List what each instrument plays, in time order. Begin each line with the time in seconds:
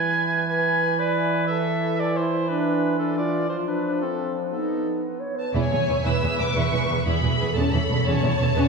Already playing: french horn section E3, flute B4, cor anglais G#5
0.48 flute B4, cor anglais G#5
0.99 cor anglais B4, flute D5
1.47 flute A4, cor anglais E5
1.99 flute A4, cor anglais D5
2.17 flute E4, cor anglais C5
2.48 flute D4, cor anglais B4
2.98 flute D4, cor anglais A4
3.16 flute F4, cor anglais D5
3.49 french horn section F3, flute F4, cor anglais C5
3.67 flute D4, cor anglais B4
4.01 flute C4, cor anglais A4
4.52 french horn section B3, flute D#4, cor anglais A4
5.04 clarinet B4
5.20 clarinet C#5
5.36 clarinet B4, violin section A5
5.55 double bass section E1, cello section E2, violin section E4 E5 G#5, viola section C#5
5.71 double bass section E1, cello section E2, violin section G#4
5.88 double bass section E1, cello section E2, violin section B4
6.04 double bass section E1, cello section E2, violin section E4 E6, viola section B4
6.22 double bass section E1, cello section E2, violin section G#4
6.39 double bass section E1, cello section E2, violin section B4 D6
6.54 double bass section E1, cello section E2, violin section E4 C#6
6.72 double bass section E1, cello section E2, violin section G#4
6.89 double bass section E1, cello section E2, violin section B4
7.05 double bass section E1, cello section E2, violin section E4 B5, viola section G#4
7.22 double bass section E1, cello section E2, viola section F#4, violin section G#4
7.38 double bass section E1, cello section E2, viola section G#4, violin section B4
7.54 double bass section E1, cello section E2, violin section C#4 C#5 A5, viola section A4
7.72 double bass section E1, cello section E2, violin section E4 B5
7.89 double bass section E1, cello section E2, violin section A4
8.04 double bass section E1, cello section E2, violin section C#4 A5, viola section C#5
8.21 double bass section E1, cello section E2, violin section E4
8.38 double bass section E1, cello section E2, violin section A4
8.54 double bass section E1, cello section E2, violin section C#4, viola section B4